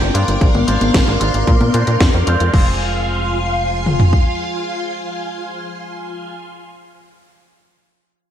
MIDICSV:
0, 0, Header, 1, 5, 480
1, 0, Start_track
1, 0, Tempo, 530973
1, 372, Time_signature, 4, 2, 24, 8
1, 7509, End_track
2, 0, Start_track
2, 0, Title_t, "String machine"
2, 0, Program_c, 0, 50
2, 0, Note_on_c, 0, 70, 76
2, 0, Note_on_c, 0, 74, 69
2, 0, Note_on_c, 0, 79, 71
2, 0, Note_on_c, 0, 86, 81
2, 353, Note_off_c, 0, 79, 0
2, 353, Note_off_c, 0, 86, 0
2, 354, Note_off_c, 0, 70, 0
2, 373, Note_on_c, 0, 70, 74
2, 373, Note_on_c, 0, 77, 69
2, 373, Note_on_c, 0, 84, 81
2, 2256, Note_off_c, 0, 74, 0
2, 2273, Note_off_c, 0, 70, 0
2, 2273, Note_off_c, 0, 77, 0
2, 2273, Note_off_c, 0, 84, 0
2, 2291, Note_on_c, 0, 65, 73
2, 2292, Note_on_c, 0, 77, 68
2, 2292, Note_on_c, 0, 80, 67
2, 2292, Note_on_c, 0, 84, 81
2, 5725, Note_off_c, 0, 65, 0
2, 5725, Note_off_c, 0, 84, 0
2, 5726, Note_off_c, 0, 77, 0
2, 5726, Note_off_c, 0, 80, 0
2, 7509, End_track
3, 0, Start_track
3, 0, Title_t, "Clean electric guitar"
3, 0, Program_c, 1, 27
3, 0, Note_on_c, 1, 58, 74
3, 0, Note_on_c, 1, 62, 72
3, 0, Note_on_c, 1, 67, 71
3, 0, Note_on_c, 1, 72, 93
3, 104, Note_off_c, 1, 58, 0
3, 104, Note_off_c, 1, 62, 0
3, 104, Note_off_c, 1, 67, 0
3, 104, Note_off_c, 1, 72, 0
3, 130, Note_on_c, 1, 72, 91
3, 134, Note_on_c, 1, 65, 71
3, 137, Note_on_c, 1, 62, 67
3, 142, Note_on_c, 1, 58, 73
3, 584, Note_off_c, 1, 58, 0
3, 584, Note_off_c, 1, 62, 0
3, 584, Note_off_c, 1, 65, 0
3, 584, Note_off_c, 1, 72, 0
3, 609, Note_on_c, 1, 72, 93
3, 614, Note_on_c, 1, 65, 75
3, 619, Note_on_c, 1, 62, 76
3, 625, Note_on_c, 1, 58, 68
3, 1064, Note_off_c, 1, 58, 0
3, 1064, Note_off_c, 1, 62, 0
3, 1064, Note_off_c, 1, 65, 0
3, 1064, Note_off_c, 1, 72, 0
3, 1089, Note_on_c, 1, 72, 89
3, 1094, Note_on_c, 1, 65, 70
3, 1099, Note_on_c, 1, 62, 68
3, 1104, Note_on_c, 1, 58, 75
3, 1544, Note_off_c, 1, 58, 0
3, 1544, Note_off_c, 1, 62, 0
3, 1544, Note_off_c, 1, 65, 0
3, 1544, Note_off_c, 1, 72, 0
3, 1570, Note_on_c, 1, 72, 89
3, 1575, Note_on_c, 1, 65, 73
3, 1579, Note_on_c, 1, 62, 78
3, 1584, Note_on_c, 1, 58, 69
3, 1843, Note_off_c, 1, 58, 0
3, 1843, Note_off_c, 1, 62, 0
3, 1843, Note_off_c, 1, 65, 0
3, 1843, Note_off_c, 1, 72, 0
3, 2049, Note_on_c, 1, 72, 74
3, 2054, Note_on_c, 1, 65, 62
3, 2059, Note_on_c, 1, 60, 61
3, 2065, Note_on_c, 1, 56, 66
3, 2281, Note_off_c, 1, 56, 0
3, 2281, Note_off_c, 1, 60, 0
3, 2282, Note_off_c, 1, 65, 0
3, 2282, Note_off_c, 1, 72, 0
3, 2288, Note_on_c, 1, 56, 80
3, 2292, Note_on_c, 1, 60, 67
3, 2296, Note_on_c, 1, 65, 66
3, 2301, Note_on_c, 1, 72, 76
3, 5725, Note_off_c, 1, 56, 0
3, 5726, Note_off_c, 1, 60, 0
3, 5726, Note_off_c, 1, 65, 0
3, 5726, Note_off_c, 1, 72, 0
3, 7509, End_track
4, 0, Start_track
4, 0, Title_t, "Analog synth bass"
4, 0, Program_c, 2, 38
4, 14, Note_on_c, 2, 31, 75
4, 102, Note_off_c, 2, 31, 0
4, 134, Note_on_c, 2, 43, 91
4, 222, Note_off_c, 2, 43, 0
4, 254, Note_on_c, 2, 31, 78
4, 342, Note_off_c, 2, 31, 0
4, 372, Note_on_c, 2, 34, 98
4, 462, Note_off_c, 2, 34, 0
4, 493, Note_on_c, 2, 32, 74
4, 582, Note_off_c, 2, 32, 0
4, 614, Note_on_c, 2, 32, 89
4, 702, Note_off_c, 2, 32, 0
4, 734, Note_on_c, 2, 32, 80
4, 823, Note_off_c, 2, 32, 0
4, 853, Note_on_c, 2, 32, 97
4, 942, Note_off_c, 2, 32, 0
4, 974, Note_on_c, 2, 32, 76
4, 1063, Note_off_c, 2, 32, 0
4, 1094, Note_on_c, 2, 32, 89
4, 1183, Note_off_c, 2, 32, 0
4, 1214, Note_on_c, 2, 32, 75
4, 1303, Note_off_c, 2, 32, 0
4, 1333, Note_on_c, 2, 46, 100
4, 1422, Note_off_c, 2, 46, 0
4, 1453, Note_on_c, 2, 46, 73
4, 1542, Note_off_c, 2, 46, 0
4, 1575, Note_on_c, 2, 46, 85
4, 1663, Note_off_c, 2, 46, 0
4, 1695, Note_on_c, 2, 46, 79
4, 1783, Note_off_c, 2, 46, 0
4, 1812, Note_on_c, 2, 41, 99
4, 1902, Note_off_c, 2, 41, 0
4, 1935, Note_on_c, 2, 41, 76
4, 2023, Note_off_c, 2, 41, 0
4, 2054, Note_on_c, 2, 41, 89
4, 2143, Note_off_c, 2, 41, 0
4, 2175, Note_on_c, 2, 41, 77
4, 2263, Note_off_c, 2, 41, 0
4, 2292, Note_on_c, 2, 29, 92
4, 3696, Note_off_c, 2, 29, 0
4, 7509, End_track
5, 0, Start_track
5, 0, Title_t, "Drums"
5, 15, Note_on_c, 9, 42, 24
5, 105, Note_off_c, 9, 42, 0
5, 134, Note_on_c, 9, 42, 85
5, 225, Note_off_c, 9, 42, 0
5, 254, Note_on_c, 9, 42, 48
5, 344, Note_off_c, 9, 42, 0
5, 372, Note_on_c, 9, 36, 109
5, 374, Note_on_c, 9, 42, 45
5, 463, Note_off_c, 9, 36, 0
5, 464, Note_off_c, 9, 42, 0
5, 494, Note_on_c, 9, 42, 22
5, 494, Note_on_c, 9, 63, 56
5, 584, Note_off_c, 9, 42, 0
5, 584, Note_off_c, 9, 63, 0
5, 613, Note_on_c, 9, 42, 81
5, 704, Note_off_c, 9, 42, 0
5, 734, Note_on_c, 9, 42, 47
5, 734, Note_on_c, 9, 63, 59
5, 824, Note_off_c, 9, 42, 0
5, 824, Note_off_c, 9, 63, 0
5, 853, Note_on_c, 9, 36, 114
5, 853, Note_on_c, 9, 38, 115
5, 853, Note_on_c, 9, 42, 46
5, 943, Note_off_c, 9, 36, 0
5, 944, Note_off_c, 9, 38, 0
5, 944, Note_off_c, 9, 42, 0
5, 973, Note_on_c, 9, 42, 23
5, 1063, Note_off_c, 9, 42, 0
5, 1093, Note_on_c, 9, 42, 81
5, 1183, Note_off_c, 9, 42, 0
5, 1213, Note_on_c, 9, 42, 46
5, 1304, Note_off_c, 9, 42, 0
5, 1333, Note_on_c, 9, 36, 111
5, 1333, Note_on_c, 9, 42, 44
5, 1423, Note_off_c, 9, 36, 0
5, 1423, Note_off_c, 9, 42, 0
5, 1453, Note_on_c, 9, 42, 22
5, 1453, Note_on_c, 9, 63, 59
5, 1543, Note_off_c, 9, 42, 0
5, 1543, Note_off_c, 9, 63, 0
5, 1572, Note_on_c, 9, 42, 79
5, 1663, Note_off_c, 9, 42, 0
5, 1692, Note_on_c, 9, 42, 45
5, 1782, Note_off_c, 9, 42, 0
5, 1812, Note_on_c, 9, 36, 104
5, 1812, Note_on_c, 9, 38, 112
5, 1812, Note_on_c, 9, 42, 46
5, 1903, Note_off_c, 9, 36, 0
5, 1903, Note_off_c, 9, 38, 0
5, 1903, Note_off_c, 9, 42, 0
5, 1933, Note_on_c, 9, 42, 23
5, 2023, Note_off_c, 9, 42, 0
5, 2053, Note_on_c, 9, 42, 78
5, 2144, Note_off_c, 9, 42, 0
5, 2173, Note_on_c, 9, 42, 47
5, 2263, Note_off_c, 9, 42, 0
5, 2292, Note_on_c, 9, 36, 100
5, 2293, Note_on_c, 9, 49, 77
5, 2383, Note_off_c, 9, 36, 0
5, 2383, Note_off_c, 9, 49, 0
5, 3492, Note_on_c, 9, 47, 56
5, 3583, Note_off_c, 9, 47, 0
5, 3613, Note_on_c, 9, 43, 69
5, 3703, Note_off_c, 9, 43, 0
5, 3732, Note_on_c, 9, 36, 78
5, 3823, Note_off_c, 9, 36, 0
5, 7509, End_track
0, 0, End_of_file